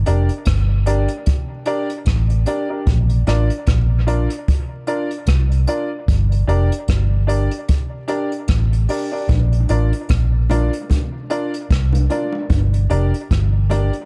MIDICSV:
0, 0, Header, 1, 4, 480
1, 0, Start_track
1, 0, Tempo, 802139
1, 1719, Time_signature, 4, 2, 24, 8
1, 8409, End_track
2, 0, Start_track
2, 0, Title_t, "Upright piano"
2, 0, Program_c, 0, 0
2, 37, Note_on_c, 0, 62, 93
2, 39, Note_on_c, 0, 67, 88
2, 42, Note_on_c, 0, 70, 89
2, 44, Note_on_c, 0, 74, 100
2, 161, Note_off_c, 0, 62, 0
2, 162, Note_off_c, 0, 67, 0
2, 163, Note_off_c, 0, 70, 0
2, 164, Note_off_c, 0, 74, 0
2, 515, Note_on_c, 0, 62, 92
2, 517, Note_on_c, 0, 67, 85
2, 520, Note_on_c, 0, 70, 80
2, 521, Note_on_c, 0, 74, 100
2, 639, Note_off_c, 0, 62, 0
2, 640, Note_off_c, 0, 67, 0
2, 642, Note_off_c, 0, 70, 0
2, 642, Note_off_c, 0, 74, 0
2, 994, Note_on_c, 0, 62, 100
2, 996, Note_on_c, 0, 67, 87
2, 998, Note_on_c, 0, 70, 89
2, 1001, Note_on_c, 0, 74, 111
2, 1118, Note_off_c, 0, 62, 0
2, 1120, Note_off_c, 0, 67, 0
2, 1120, Note_off_c, 0, 70, 0
2, 1122, Note_off_c, 0, 74, 0
2, 1475, Note_on_c, 0, 62, 86
2, 1476, Note_on_c, 0, 67, 81
2, 1479, Note_on_c, 0, 70, 79
2, 1481, Note_on_c, 0, 74, 103
2, 1599, Note_off_c, 0, 62, 0
2, 1600, Note_off_c, 0, 67, 0
2, 1601, Note_off_c, 0, 70, 0
2, 1602, Note_off_c, 0, 74, 0
2, 1610, Note_on_c, 0, 62, 69
2, 1613, Note_on_c, 0, 67, 63
2, 1615, Note_on_c, 0, 70, 68
2, 1618, Note_on_c, 0, 74, 72
2, 1706, Note_off_c, 0, 62, 0
2, 1708, Note_off_c, 0, 67, 0
2, 1709, Note_off_c, 0, 70, 0
2, 1710, Note_off_c, 0, 74, 0
2, 1957, Note_on_c, 0, 62, 95
2, 1959, Note_on_c, 0, 65, 86
2, 1961, Note_on_c, 0, 70, 84
2, 1964, Note_on_c, 0, 74, 105
2, 2080, Note_off_c, 0, 62, 0
2, 2081, Note_off_c, 0, 65, 0
2, 2082, Note_off_c, 0, 70, 0
2, 2083, Note_off_c, 0, 74, 0
2, 2434, Note_on_c, 0, 62, 92
2, 2436, Note_on_c, 0, 65, 91
2, 2438, Note_on_c, 0, 70, 87
2, 2440, Note_on_c, 0, 74, 95
2, 2558, Note_off_c, 0, 62, 0
2, 2559, Note_off_c, 0, 65, 0
2, 2561, Note_off_c, 0, 70, 0
2, 2562, Note_off_c, 0, 74, 0
2, 2915, Note_on_c, 0, 62, 90
2, 2916, Note_on_c, 0, 65, 88
2, 2920, Note_on_c, 0, 70, 89
2, 2921, Note_on_c, 0, 74, 103
2, 3039, Note_off_c, 0, 62, 0
2, 3040, Note_off_c, 0, 65, 0
2, 3042, Note_off_c, 0, 70, 0
2, 3042, Note_off_c, 0, 74, 0
2, 3396, Note_on_c, 0, 62, 89
2, 3399, Note_on_c, 0, 65, 78
2, 3401, Note_on_c, 0, 70, 77
2, 3403, Note_on_c, 0, 74, 100
2, 3520, Note_off_c, 0, 62, 0
2, 3521, Note_off_c, 0, 65, 0
2, 3522, Note_off_c, 0, 70, 0
2, 3523, Note_off_c, 0, 74, 0
2, 3874, Note_on_c, 0, 62, 93
2, 3877, Note_on_c, 0, 67, 84
2, 3881, Note_on_c, 0, 70, 91
2, 3881, Note_on_c, 0, 74, 109
2, 3999, Note_off_c, 0, 62, 0
2, 4000, Note_off_c, 0, 67, 0
2, 4002, Note_off_c, 0, 70, 0
2, 4002, Note_off_c, 0, 74, 0
2, 4351, Note_on_c, 0, 62, 90
2, 4354, Note_on_c, 0, 67, 81
2, 4357, Note_on_c, 0, 70, 80
2, 4358, Note_on_c, 0, 74, 103
2, 4478, Note_off_c, 0, 62, 0
2, 4479, Note_off_c, 0, 67, 0
2, 4481, Note_off_c, 0, 70, 0
2, 4481, Note_off_c, 0, 74, 0
2, 4833, Note_on_c, 0, 62, 98
2, 4836, Note_on_c, 0, 67, 86
2, 4838, Note_on_c, 0, 70, 88
2, 4841, Note_on_c, 0, 74, 100
2, 4959, Note_off_c, 0, 62, 0
2, 4960, Note_off_c, 0, 67, 0
2, 4961, Note_off_c, 0, 70, 0
2, 4963, Note_off_c, 0, 74, 0
2, 5319, Note_on_c, 0, 62, 84
2, 5320, Note_on_c, 0, 67, 80
2, 5324, Note_on_c, 0, 70, 78
2, 5326, Note_on_c, 0, 74, 95
2, 5442, Note_off_c, 0, 62, 0
2, 5443, Note_off_c, 0, 67, 0
2, 5444, Note_off_c, 0, 70, 0
2, 5446, Note_off_c, 0, 74, 0
2, 5455, Note_on_c, 0, 62, 71
2, 5456, Note_on_c, 0, 67, 61
2, 5459, Note_on_c, 0, 70, 62
2, 5461, Note_on_c, 0, 74, 76
2, 5550, Note_off_c, 0, 62, 0
2, 5551, Note_off_c, 0, 67, 0
2, 5552, Note_off_c, 0, 70, 0
2, 5553, Note_off_c, 0, 74, 0
2, 5800, Note_on_c, 0, 62, 94
2, 5803, Note_on_c, 0, 65, 83
2, 5806, Note_on_c, 0, 70, 82
2, 5807, Note_on_c, 0, 74, 102
2, 5923, Note_off_c, 0, 62, 0
2, 5924, Note_off_c, 0, 65, 0
2, 5926, Note_off_c, 0, 70, 0
2, 5927, Note_off_c, 0, 74, 0
2, 6281, Note_on_c, 0, 62, 94
2, 6284, Note_on_c, 0, 65, 85
2, 6286, Note_on_c, 0, 70, 87
2, 6289, Note_on_c, 0, 74, 102
2, 6404, Note_off_c, 0, 62, 0
2, 6405, Note_off_c, 0, 65, 0
2, 6406, Note_off_c, 0, 70, 0
2, 6408, Note_off_c, 0, 74, 0
2, 6762, Note_on_c, 0, 62, 97
2, 6765, Note_on_c, 0, 65, 86
2, 6767, Note_on_c, 0, 70, 85
2, 6768, Note_on_c, 0, 74, 106
2, 6884, Note_off_c, 0, 62, 0
2, 6886, Note_off_c, 0, 65, 0
2, 6887, Note_off_c, 0, 70, 0
2, 6887, Note_off_c, 0, 74, 0
2, 7239, Note_on_c, 0, 62, 84
2, 7243, Note_on_c, 0, 65, 78
2, 7245, Note_on_c, 0, 70, 80
2, 7249, Note_on_c, 0, 74, 92
2, 7363, Note_off_c, 0, 62, 0
2, 7365, Note_off_c, 0, 65, 0
2, 7366, Note_off_c, 0, 70, 0
2, 7368, Note_off_c, 0, 74, 0
2, 7718, Note_on_c, 0, 62, 94
2, 7720, Note_on_c, 0, 67, 81
2, 7723, Note_on_c, 0, 70, 90
2, 7724, Note_on_c, 0, 74, 101
2, 7842, Note_off_c, 0, 62, 0
2, 7843, Note_off_c, 0, 67, 0
2, 7845, Note_off_c, 0, 70, 0
2, 7845, Note_off_c, 0, 74, 0
2, 8196, Note_on_c, 0, 62, 93
2, 8200, Note_on_c, 0, 67, 83
2, 8201, Note_on_c, 0, 70, 83
2, 8204, Note_on_c, 0, 74, 105
2, 8321, Note_off_c, 0, 62, 0
2, 8323, Note_off_c, 0, 67, 0
2, 8324, Note_off_c, 0, 70, 0
2, 8325, Note_off_c, 0, 74, 0
2, 8409, End_track
3, 0, Start_track
3, 0, Title_t, "Fingered electric bass"
3, 0, Program_c, 1, 33
3, 48, Note_on_c, 1, 29, 83
3, 169, Note_off_c, 1, 29, 0
3, 283, Note_on_c, 1, 31, 89
3, 633, Note_off_c, 1, 31, 0
3, 1239, Note_on_c, 1, 33, 85
3, 1460, Note_off_c, 1, 33, 0
3, 1719, Note_on_c, 1, 34, 105
3, 1940, Note_off_c, 1, 34, 0
3, 1961, Note_on_c, 1, 33, 89
3, 2085, Note_off_c, 1, 33, 0
3, 2201, Note_on_c, 1, 34, 82
3, 2552, Note_off_c, 1, 34, 0
3, 3158, Note_on_c, 1, 36, 89
3, 3380, Note_off_c, 1, 36, 0
3, 3640, Note_on_c, 1, 31, 101
3, 3861, Note_off_c, 1, 31, 0
3, 3876, Note_on_c, 1, 29, 91
3, 4003, Note_off_c, 1, 29, 0
3, 4123, Note_on_c, 1, 31, 89
3, 4473, Note_off_c, 1, 31, 0
3, 5082, Note_on_c, 1, 33, 84
3, 5303, Note_off_c, 1, 33, 0
3, 5561, Note_on_c, 1, 34, 105
3, 5783, Note_off_c, 1, 34, 0
3, 5805, Note_on_c, 1, 33, 88
3, 5928, Note_off_c, 1, 33, 0
3, 6044, Note_on_c, 1, 34, 80
3, 6395, Note_off_c, 1, 34, 0
3, 7007, Note_on_c, 1, 36, 83
3, 7226, Note_off_c, 1, 36, 0
3, 7483, Note_on_c, 1, 31, 103
3, 7704, Note_off_c, 1, 31, 0
3, 7724, Note_on_c, 1, 29, 90
3, 7848, Note_off_c, 1, 29, 0
3, 7965, Note_on_c, 1, 31, 92
3, 8316, Note_off_c, 1, 31, 0
3, 8409, End_track
4, 0, Start_track
4, 0, Title_t, "Drums"
4, 36, Note_on_c, 9, 42, 73
4, 96, Note_off_c, 9, 42, 0
4, 173, Note_on_c, 9, 42, 55
4, 233, Note_off_c, 9, 42, 0
4, 271, Note_on_c, 9, 42, 88
4, 280, Note_on_c, 9, 36, 106
4, 281, Note_on_c, 9, 37, 100
4, 331, Note_off_c, 9, 42, 0
4, 340, Note_off_c, 9, 36, 0
4, 341, Note_off_c, 9, 37, 0
4, 517, Note_on_c, 9, 42, 84
4, 577, Note_off_c, 9, 42, 0
4, 648, Note_on_c, 9, 42, 54
4, 708, Note_off_c, 9, 42, 0
4, 755, Note_on_c, 9, 42, 83
4, 761, Note_on_c, 9, 36, 100
4, 814, Note_off_c, 9, 42, 0
4, 821, Note_off_c, 9, 36, 0
4, 991, Note_on_c, 9, 42, 64
4, 1050, Note_off_c, 9, 42, 0
4, 1135, Note_on_c, 9, 42, 53
4, 1195, Note_off_c, 9, 42, 0
4, 1231, Note_on_c, 9, 42, 96
4, 1238, Note_on_c, 9, 36, 113
4, 1243, Note_on_c, 9, 37, 127
4, 1291, Note_off_c, 9, 42, 0
4, 1298, Note_off_c, 9, 36, 0
4, 1303, Note_off_c, 9, 37, 0
4, 1375, Note_on_c, 9, 42, 50
4, 1435, Note_off_c, 9, 42, 0
4, 1471, Note_on_c, 9, 42, 82
4, 1531, Note_off_c, 9, 42, 0
4, 1714, Note_on_c, 9, 42, 91
4, 1718, Note_on_c, 9, 36, 124
4, 1774, Note_off_c, 9, 42, 0
4, 1778, Note_off_c, 9, 36, 0
4, 1852, Note_on_c, 9, 42, 54
4, 1912, Note_off_c, 9, 42, 0
4, 1956, Note_on_c, 9, 42, 79
4, 1963, Note_on_c, 9, 37, 62
4, 2015, Note_off_c, 9, 42, 0
4, 2023, Note_off_c, 9, 37, 0
4, 2094, Note_on_c, 9, 42, 57
4, 2154, Note_off_c, 9, 42, 0
4, 2193, Note_on_c, 9, 42, 86
4, 2200, Note_on_c, 9, 36, 112
4, 2203, Note_on_c, 9, 37, 96
4, 2253, Note_off_c, 9, 42, 0
4, 2260, Note_off_c, 9, 36, 0
4, 2263, Note_off_c, 9, 37, 0
4, 2439, Note_on_c, 9, 42, 84
4, 2499, Note_off_c, 9, 42, 0
4, 2573, Note_on_c, 9, 42, 56
4, 2633, Note_off_c, 9, 42, 0
4, 2681, Note_on_c, 9, 42, 81
4, 2683, Note_on_c, 9, 36, 98
4, 2741, Note_off_c, 9, 42, 0
4, 2743, Note_off_c, 9, 36, 0
4, 2914, Note_on_c, 9, 42, 60
4, 2974, Note_off_c, 9, 42, 0
4, 3056, Note_on_c, 9, 42, 50
4, 3116, Note_off_c, 9, 42, 0
4, 3151, Note_on_c, 9, 42, 95
4, 3159, Note_on_c, 9, 36, 106
4, 3163, Note_on_c, 9, 37, 127
4, 3211, Note_off_c, 9, 42, 0
4, 3218, Note_off_c, 9, 36, 0
4, 3223, Note_off_c, 9, 37, 0
4, 3300, Note_on_c, 9, 42, 54
4, 3360, Note_off_c, 9, 42, 0
4, 3394, Note_on_c, 9, 42, 76
4, 3454, Note_off_c, 9, 42, 0
4, 3640, Note_on_c, 9, 36, 119
4, 3641, Note_on_c, 9, 42, 95
4, 3700, Note_off_c, 9, 36, 0
4, 3701, Note_off_c, 9, 42, 0
4, 3781, Note_on_c, 9, 42, 53
4, 3841, Note_off_c, 9, 42, 0
4, 3882, Note_on_c, 9, 42, 72
4, 3942, Note_off_c, 9, 42, 0
4, 4020, Note_on_c, 9, 42, 57
4, 4080, Note_off_c, 9, 42, 0
4, 4117, Note_on_c, 9, 42, 84
4, 4122, Note_on_c, 9, 36, 101
4, 4127, Note_on_c, 9, 37, 104
4, 4177, Note_off_c, 9, 42, 0
4, 4182, Note_off_c, 9, 36, 0
4, 4187, Note_off_c, 9, 37, 0
4, 4362, Note_on_c, 9, 42, 83
4, 4422, Note_off_c, 9, 42, 0
4, 4495, Note_on_c, 9, 42, 58
4, 4555, Note_off_c, 9, 42, 0
4, 4598, Note_on_c, 9, 42, 88
4, 4603, Note_on_c, 9, 36, 101
4, 4658, Note_off_c, 9, 42, 0
4, 4663, Note_off_c, 9, 36, 0
4, 4835, Note_on_c, 9, 42, 61
4, 4895, Note_off_c, 9, 42, 0
4, 4977, Note_on_c, 9, 42, 50
4, 5037, Note_off_c, 9, 42, 0
4, 5073, Note_on_c, 9, 42, 98
4, 5080, Note_on_c, 9, 36, 113
4, 5085, Note_on_c, 9, 37, 126
4, 5133, Note_off_c, 9, 42, 0
4, 5140, Note_off_c, 9, 36, 0
4, 5145, Note_off_c, 9, 37, 0
4, 5222, Note_on_c, 9, 42, 50
4, 5282, Note_off_c, 9, 42, 0
4, 5318, Note_on_c, 9, 46, 80
4, 5378, Note_off_c, 9, 46, 0
4, 5560, Note_on_c, 9, 42, 93
4, 5561, Note_on_c, 9, 36, 118
4, 5561, Note_on_c, 9, 60, 70
4, 5620, Note_off_c, 9, 36, 0
4, 5620, Note_off_c, 9, 42, 0
4, 5621, Note_off_c, 9, 60, 0
4, 5700, Note_on_c, 9, 42, 51
4, 5759, Note_off_c, 9, 42, 0
4, 5797, Note_on_c, 9, 42, 71
4, 5857, Note_off_c, 9, 42, 0
4, 5940, Note_on_c, 9, 42, 56
4, 6000, Note_off_c, 9, 42, 0
4, 6037, Note_on_c, 9, 42, 85
4, 6044, Note_on_c, 9, 36, 105
4, 6047, Note_on_c, 9, 37, 102
4, 6097, Note_off_c, 9, 42, 0
4, 6103, Note_off_c, 9, 36, 0
4, 6107, Note_off_c, 9, 37, 0
4, 6281, Note_on_c, 9, 60, 53
4, 6281, Note_on_c, 9, 61, 75
4, 6286, Note_on_c, 9, 42, 85
4, 6340, Note_off_c, 9, 60, 0
4, 6340, Note_off_c, 9, 61, 0
4, 6346, Note_off_c, 9, 42, 0
4, 6421, Note_on_c, 9, 42, 55
4, 6481, Note_off_c, 9, 42, 0
4, 6520, Note_on_c, 9, 60, 70
4, 6526, Note_on_c, 9, 42, 88
4, 6527, Note_on_c, 9, 36, 99
4, 6580, Note_off_c, 9, 60, 0
4, 6586, Note_off_c, 9, 42, 0
4, 6587, Note_off_c, 9, 36, 0
4, 6762, Note_on_c, 9, 42, 64
4, 6822, Note_off_c, 9, 42, 0
4, 6904, Note_on_c, 9, 42, 52
4, 6964, Note_off_c, 9, 42, 0
4, 7004, Note_on_c, 9, 42, 95
4, 7005, Note_on_c, 9, 36, 109
4, 7016, Note_on_c, 9, 37, 123
4, 7064, Note_off_c, 9, 36, 0
4, 7064, Note_off_c, 9, 42, 0
4, 7075, Note_off_c, 9, 37, 0
4, 7137, Note_on_c, 9, 60, 65
4, 7148, Note_on_c, 9, 42, 52
4, 7197, Note_off_c, 9, 60, 0
4, 7208, Note_off_c, 9, 42, 0
4, 7241, Note_on_c, 9, 42, 79
4, 7242, Note_on_c, 9, 61, 61
4, 7301, Note_off_c, 9, 42, 0
4, 7302, Note_off_c, 9, 61, 0
4, 7375, Note_on_c, 9, 60, 66
4, 7435, Note_off_c, 9, 60, 0
4, 7478, Note_on_c, 9, 60, 72
4, 7481, Note_on_c, 9, 36, 121
4, 7481, Note_on_c, 9, 42, 95
4, 7538, Note_off_c, 9, 60, 0
4, 7541, Note_off_c, 9, 36, 0
4, 7541, Note_off_c, 9, 42, 0
4, 7621, Note_on_c, 9, 42, 54
4, 7681, Note_off_c, 9, 42, 0
4, 7720, Note_on_c, 9, 42, 72
4, 7780, Note_off_c, 9, 42, 0
4, 7862, Note_on_c, 9, 42, 58
4, 7922, Note_off_c, 9, 42, 0
4, 7963, Note_on_c, 9, 42, 87
4, 7964, Note_on_c, 9, 36, 105
4, 7973, Note_on_c, 9, 37, 97
4, 8023, Note_off_c, 9, 42, 0
4, 8024, Note_off_c, 9, 36, 0
4, 8033, Note_off_c, 9, 37, 0
4, 8198, Note_on_c, 9, 60, 55
4, 8198, Note_on_c, 9, 61, 72
4, 8203, Note_on_c, 9, 42, 86
4, 8258, Note_off_c, 9, 60, 0
4, 8258, Note_off_c, 9, 61, 0
4, 8263, Note_off_c, 9, 42, 0
4, 8336, Note_on_c, 9, 42, 51
4, 8396, Note_off_c, 9, 42, 0
4, 8409, End_track
0, 0, End_of_file